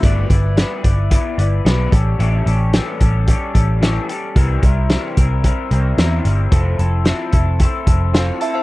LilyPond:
<<
  \new Staff \with { instrumentName = "Synth bell" } { \time 4/4 \key g \mixolydian \tempo 4 = 111 r1 | r1 | r1 | r2. <f'' c'''>8 <e'' a''>16 <c'' f''>16 | }
  \new Staff \with { instrumentName = "Soft synth lead" } { \time 4/4 \key g \mixolydian r1 | r1 | r1 | r2. r8 e''8 | }
  \new Staff \with { instrumentName = "Clean electric guitar" } { \time 4/4 \key g \mixolydian <g b e' b' d''>8 <e' b' d''>8 <g b e' b' d''>8 <e' b' d''>8 <b e' b' d''>8 <e' b' d''>8 <g b e' b' d''>8 <g cis' g' a'>8 | <a, e g cis' g' a'>8 <g cis' g' a'>8 <a, e g cis' g' a'>8 <g cis' g' a'>8 <g cis' g' a'>8 <g cis' g' a'>8 <a, e g cis' g' a'>8 <g cis' g' a'>8 | <c e g c' e' bes'>8 <g c' e' bes'>8 <c e g c' e' bes'>8 <g c' e' bes'>8 <g c' e' bes'>8 <g c' e' bes'>8 <c e g c' e' bes'>8 <g c' e' bes'>8 | <f a c' e' a'>8 <c' e' a'>8 <f a c' e' a'>8 <c' e' a'>8 <a c' e' a'>8 <c' e' a'>8 <f a c' e' a'>8 <c' e' a'>8 | }
  \new Staff \with { instrumentName = "Picked electric bass" } { \clef bass \time 4/4 \key g \mixolydian g,,8 g,,8. r16 g,,8. r16 g,,8 b,,8 a,,8 | a,,8 a,,8. r16 a,,8. r16 a,,4 r8 | c,8 c,8. r16 c,8. r16 c,8 e,8 g,,8 | f,,8 f,,8. r16 f,,8. r16 f,,4 r8 | }
  \new DrumStaff \with { instrumentName = "Drums" } \drummode { \time 4/4 <hh bd>8 <hh bd>8 <hh sn>8 <hh bd>8 <hh bd>8 hh8 <hh sn>8 <hh bd>8 | hh8 hh8 <hh sn>8 <hh bd>8 <hh bd>8 <hh bd>8 <hh sn>8 hh8 | <hh bd>8 <hh bd>8 <hh sn>8 <hh bd>8 <hh bd>8 hh8 <hh sn>8 hh8 | <hh bd>8 hh8 <hh sn>8 <hh bd>8 <hh bd>8 <hh bd>8 <hh sn>8 hh8 | }
>>